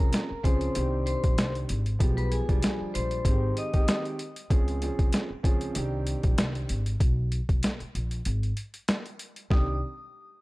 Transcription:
Already playing: grand piano F3 C4 C#4 G#4, vibraphone A#4 A#5
0.00 upright bass C2
0.13 snare, closed hi-hat
0.31 muted upright bass stroke
0.43 upright bass C#2, grand piano F3 C4 C#4 G#4, vibraphone C5 C6, kick, closed hi-hat
0.61 closed hi-hat
0.75 upright bass C2, grand piano D#3 C4 D4 G4, closed hi-hat
1.06 vibraphone C5 C6, closed hi-hat
1.24 upright bass A#1, kick, closed hi-hat
1.38 upright bass C2, snare, closed hi-hat
1.55 closed hi-hat
1.69 upright bass G#1, closed hi-hat
1.86 closed hi-hat
1.99 upright bass B1, grand piano F3 G#3 B3 G4, kick, closed hi-hat
2.17 vibraphone B4 B5, closed hi-hat
2.32 vibraphone G#4 G#5, closed hi-hat
2.48 upright bass B1, grand piano F3 G3 G#3 D4, kick, closed hi-hat
2.62 snare, closed hi-hat
2.81 muted upright bass stroke
2.94 upright bass A#1, vibraphone C5 C6, closed hi-hat
3.11 closed hi-hat
3.25 upright bass G#1, grand piano D#3 G#3 C4 G4, kick, closed hi-hat
3.57 vibraphone D#5 D#6, closed hi-hat
3.73 grand piano D#3 G#3 C4 G4, kick, closed hi-hat
3.88 snare, closed hi-hat
4.05 closed hi-hat
4.19 closed hi-hat
4.36 closed hi-hat
4.50 upright bass C#2, grand piano F3 C4 C#4 G#4, kick, closed hi-hat
4.68 closed hi-hat
4.82 grand piano F3 C4 C#4 G#4, closed hi-hat
4.99 upright bass C2, kick, closed hi-hat
5.13 snare, closed hi-hat
5.30 muted upright bass stroke
5.43 upright bass C#2, grand piano F3 C4 C#4 G#4, kick, closed hi-hat
5.61 closed hi-hat
5.75 upright bass C2, grand piano D#3 C4 D4 G4, closed hi-hat
6.07 closed hi-hat
6.23 upright bass A#1, kick, closed hi-hat
6.38 upright bass C2, snare, closed hi-hat
6.55 closed hi-hat
6.69 upright bass G#1, closed hi-hat
6.86 closed hi-hat
7.00 upright bass B1, kick, closed hi-hat
7.32 closed hi-hat
7.49 upright bass B1, kick, closed hi-hat
7.63 snare, closed hi-hat
7.80 muted upright bass stroke, closed hi-hat
7.95 upright bass A#1, closed hi-hat
8.11 closed hi-hat
8.25 upright bass G#1, closed hi-hat
8.43 closed hi-hat
8.57 closed hi-hat
8.74 closed hi-hat
8.88 snare, closed hi-hat
9.06 closed hi-hat
9.19 closed hi-hat
9.36 closed hi-hat
9.50 upright bass C2, grand piano D#3 C4 D4 G4, vibraphone D#6, kick, snare

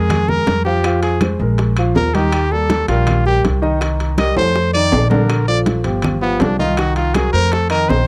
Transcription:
Already playing: upright bass F2, grand piano G#3 G#4 A#4, trumpet G#4
0.10 high bongo, high conga, low conga, high timbale, claves
0.28 grand piano G#3 G#4 A#4, trumpet A#4, high bongo, high conga, low conga
0.46 upright bass F2, high bongo, low bongo, high conga, high timbale
0.65 grand piano F3 F4 F5, trumpet G4, high bongo
0.83 grand piano F3 F4 F5, high bongo, high conga, high timbale, claves
1.03 trumpet G#4, high bongo, high conga, high timbale
1.21 grand piano G#3 G#4 C5, high bongo, high conga, high timbale, claves
1.39 upright bass A#1, grand piano G#3 G#4 A#4, high conga
1.58 high bongo, high conga, high timbale
1.77 grand piano F3 F4 F5, high bongo, high conga, high timbale, claves
1.95 upright bass D#2, trumpet A#4, high bongo, low bongo, high conga, low timbale
2.14 grand piano D#3 D#4 D#5, trumpet G4, high bongo, high conga, high timbale
2.32 high bongo, high conga, high timbale, claves
2.52 grand piano G3 A#3 G4, trumpet A4, high bongo, high conga
2.70 high bongo, high conga, high timbale
2.88 upright bass A#1, grand piano G3 G4 A#4, trumpet F4, high timbale
3.07 high bongo, high conga, low conga, high timbale, claves
3.26 grand piano G3 G4 A#4, trumpet G4, high bongo, high conga
3.44 upright bass C2, high bongo, low bongo, high conga, high timbale
3.62 grand piano D#3 D#4 D#5, high bongo
3.81 grand piano D#3 D#4 D#5, high bongo, high conga, high timbale, claves
4.00 high bongo, high conga, high timbale
4.18 grand piano G3 G4 A#4, trumpet D#5, high bongo, high conga, high timbale, claves
4.36 upright bass F2, grand piano A3 A4 C5, trumpet C5, high conga, high timbale
4.56 high bongo, high conga
4.73 grand piano D#3 D#4 D5, trumpet D5, high bongo, high conga, claves
4.92 upright bass A#1, high bongo, low bongo, high conga, low timbale
5.10 grand piano D3 D4 D5, trumpet A#4, high bongo, high conga, low timbale
5.30 high bongo, high conga, high timbale, claves
5.48 grand piano F3 F4 A4, trumpet D5, high bongo, high conga
5.66 high bongo, high conga, high timbale
5.84 upright bass G1, grand piano F3 F4 G4, high timbale
6.02 high bongo, high conga, low conga, high timbale, claves
6.22 grand piano F3 F4 G4, trumpet B3, high bongo, high conga
6.40 upright bass C2, trumpet D4, high bongo, low bongo, high conga, high timbale, low timbale
6.59 grand piano D#3 D#4 D#5, trumpet F4, high bongo, high conga
6.77 grand piano D#3 D#4 D#5, trumpet F#4, high bongo, high timbale, claves
6.96 trumpet F4, high bongo, high conga, high timbale
7.14 grand piano F#3 F#4 A#4, trumpet G#4, high bongo, high conga, high timbale, claves
7.33 upright bass F2, grand piano A3 A4 C5, trumpet A#4, high conga
7.52 trumpet A4, high bongo, high conga, high timbale
7.70 grand piano D#3 D#4 D#5, trumpet A#4, high bongo, high conga, high timbale, claves
7.89 upright bass A#1, trumpet C5, high bongo, low bongo, high conga, low timbale

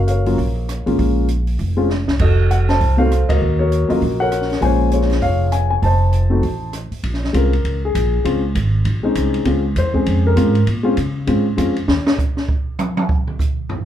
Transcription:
Already playing: upright bass F#1, grand piano F#4
0.07 grand piano A#4 C#5 F5, closed hi-hat
0.26 grand piano F#3 A#3 C#4 F4, open hi-hat
0.38 upright bass A#1, kick, open hi-hat
0.69 cross-stick, closed hi-hat
0.86 upright bass A1, grand piano G#3 A#3 C#4 F4, open hi-hat
0.99 upright bass A#1, kick, open hi-hat
1.29 closed hi-hat
1.47 open hi-hat
1.59 upright bass F1, kick, open hi-hat
1.77 grand piano G#3 C4 C#4 F4
1.90 snare
2.08 upright bass C2, snare
2.19 upright bass F1, grand piano F#4 A4 D#5, kick, crash
2.51 grand piano F#5, closed hi-hat
2.69 grand piano C5 D#5 A5, snare, open hi-hat
2.81 upright bass C2, kick, open hi-hat
2.97 grand piano A3 C4 D#4 F#4 A4 C5 F5
3.11 cross-stick, closed hi-hat
3.29 upright bass C#2, grand piano F#4 A#4 D#5, kick, ride
3.40 upright bass D#2
3.59 grand piano F#4 A#4 C#5
3.72 closed hi-hat
3.88 grand piano F#3 A#3 C#4 F4 F#4 A#4 D#5, muted upright bass stroke, open hi-hat
4.01 upright bass A#1, kick, open hi-hat
4.20 grand piano A#4 C#5 F#5
4.32 cross-stick, closed hi-hat
4.42 snare
4.50 snare, open hi-hat
4.61 upright bass A#1, grand piano G#3 A#3 C#4 F4 C5 C#5 G#5, kick, open hi-hat
4.92 grand piano F4 G#4 C#5, closed hi-hat
5.01 snare
5.10 snare, open hi-hat
5.21 upright bass F1, grand piano G#4 C#5 F5, kick, open hi-hat
5.52 grand piano G#5, cross-stick, closed hi-hat
5.70 grand piano G#5
5.82 upright bass F1, grand piano C5 D#5 A5, kick, open hi-hat
6.13 closed hi-hat
6.30 grand piano A3 C4 D#4 F#4
6.43 upright bass A1, kick, open hi-hat
6.73 cross-stick, closed hi-hat
6.91 muted upright bass stroke, open hi-hat
7.03 upright bass A#1, kick, ride
7.14 snare
7.24 snare
7.33 upright bass C2, grand piano G#3 C4 C#4 F4, kick, hi-hat pedal, ride
7.37 grand piano A#4
7.53 ride
7.64 upright bass C#2, kick, ride
7.85 grand piano G#4
7.95 upright bass A#1, kick, hi-hat pedal, ride
8.24 upright bass C#2, grand piano G#3 C4 C#4 F4, kick, ride
8.55 upright bass G#1, kick, hi-hat pedal, ride
8.85 upright bass A#1, kick, ride
9.03 grand piano G#3 C4 C#4 D#4
9.15 upright bass C2, kick, hi-hat pedal, ride
9.34 ride
9.45 upright bass C#2, grand piano G#3 C4 C#4 F4, kick, ride
9.76 upright bass E2, grand piano C5, kick, hi-hat pedal, ride
9.94 grand piano G#3 C4 C#4 G#4, kick
10.06 upright bass F2, kick, ride
10.27 grand piano A#4
10.36 upright bass G#2, grand piano G#3 C4 C#4 F4, kick, hi-hat pedal, ride
10.55 ride
10.67 upright bass A#2, kick, ride
10.83 grand piano G#3 C4 C#4 F4
10.97 upright bass C#3, kick, hi-hat pedal, ride
11.27 upright bass G#2, grand piano G#3 C4 C#4 F4, kick, ride
11.57 upright bass F2, grand piano G#3 C4 C#4 F4, kick, hi-hat pedal, ride
11.76 ride
11.88 upright bass D#2, snare
12.07 snare
12.19 kick, hi-hat pedal
12.37 snare
12.49 kick
12.79 hi-hat pedal, high tom
12.97 high tom
13.09 kick
13.27 mid tom
13.39 kick, hi-hat pedal
13.69 floor tom

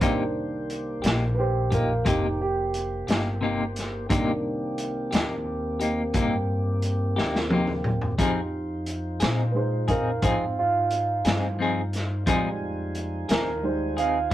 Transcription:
0.01 upright bass C2, clean electric guitar C3 A#3 D#4 G4, upright piano D#3 A#3 D4 C5, tonewheel organ A#3 G4 C5, kick, closed hi-hat
0.70 closed hi-hat
1.02 upright bass A#1, clean electric guitar A#3 D#4 G4, closed hi-hat
1.06 snare
1.35 upright piano G4 B4
1.39 upright piano C5
1.70 clean electric guitar A#3 D#4 G4, upright piano F4 A#4, kick, closed hi-hat
2.05 upright bass F1, clean electric guitar C3 A#3 D#4 G4, upright piano D#4 G4, kick, closed hi-hat
2.41 upright piano G4
2.74 closed hi-hat
3.07 upright bass G1, clean electric guitar A#3 D#4 G4, snare, closed hi-hat
3.41 clean electric guitar C3 A#3 D#4 G4
3.76 snare, closed hi-hat
4.09 upright bass C2, clean electric guitar C3 A#3 D#4 G4, upright piano D#3 A#3 D4, tonewheel organ A#3 C4 G4, kick, closed hi-hat
4.78 closed hi-hat
5.11 upright bass D#2, clean electric guitar A#3 D#4 G4, snare, closed hi-hat
5.80 clean electric guitar A#3 D#4 G4, closed hi-hat
6.14 upright bass G2, clean electric guitar C3 A#3 D#4 G4, kick, closed hi-hat
6.82 closed hi-hat
7.16 upright bass D#2, clean electric guitar A#3 D#4 G4, snare
7.36 snare
7.50 clean electric guitar C3 A#3 D#4 G4, high tom
7.67 mid tom
7.84 mid tom
8.02 floor tom
8.18 upright bass F2, clean electric guitar F3 C4 D#4 G#4, upright piano D#4 G4, tonewheel organ D#4 F4 C5, kick, closed hi-hat
8.86 closed hi-hat
9.20 upright bass A#2, clean electric guitar C4 D#4 G#4, snare, closed hi-hat
9.51 upright piano G#3 D#4 B4
9.55 upright piano G#4 C5
9.88 clean electric guitar C4 D#4 G#4, upright piano F4 A#4, kick, closed hi-hat
10.22 upright bass G#2, clean electric guitar F3 C4 D#4 G#4, upright piano C4 F4, kick, closed hi-hat
10.59 upright piano F4
10.91 closed hi-hat
11.25 upright bass G2, clean electric guitar C4 D#4 G#4, snare, closed hi-hat
11.59 clean electric guitar F3 C4 D#4 G#4
11.93 snare, closed hi-hat
12.26 upright bass F2, clean electric guitar F3 C4 D#4 G#4, upright piano G3 G#3 D#4, tonewheel organ D#4 F4 C5 G#5, kick, closed hi-hat
12.95 closed hi-hat
13.29 upright bass D#2, clean electric guitar C4 D#4 G#4, upright piano A#4, snare, closed hi-hat
13.62 upright piano G3 G#3 D#4 C5
13.97 clean electric guitar C4 D#4 G#4, upright piano F5, closed hi-hat
14.31 clean electric guitar F3

